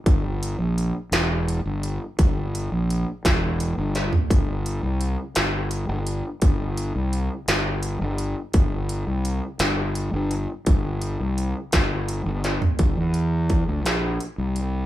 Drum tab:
HH |x-x-x-x-x-x-|x-x-x-x-x-x-|x-x-x-x-x-x-|x-x-x-x-x-x-|
SD |------o-----|------o---o-|------o-----|------o-----|
FT |------------|-----------o|------------|------------|
BD |o-----------|o-----o-----|o-----------|o-----------|

HH |x-x-x-x-x-x-|x-x-x-x-x-x-|x-x-x-x-x-x-|
SD |------o-----|------o---o-|------o-----|
FT |------------|-----------o|------------|
BD |o-----------|o-----o-----|o---o-------|